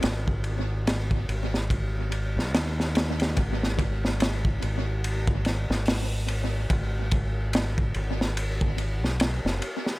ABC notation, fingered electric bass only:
X:1
M:4/4
L:1/16
Q:"Swing 16ths" 1/4=72
K:G#m
V:1 name="Fingered electric bass" clef=bass
G,,,6 G,,,4- G,,, B,,, D,,4 | G,,,6 G,,,4- G,,, G,,,4- G,,, | G,,,6 G,,,4- G,,, B,,,2 F,,, z2 |]